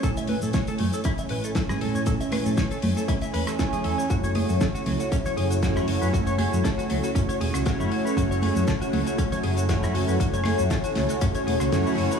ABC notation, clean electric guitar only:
X:1
M:4/4
L:1/16
Q:"Swing 16ths" 1/4=118
K:A
V:1 name="Clean electric guitar"
A e B A c A A, A E e B A A G A c | A e B A c A A, A E e B A A G A c | F c G F A F F, F C c G F F E F B | F c G F A F F, F C c G F F E F B |
F c G F A F F, F C c G F F E F B | F c G F A F F, F C c G F F E F B |]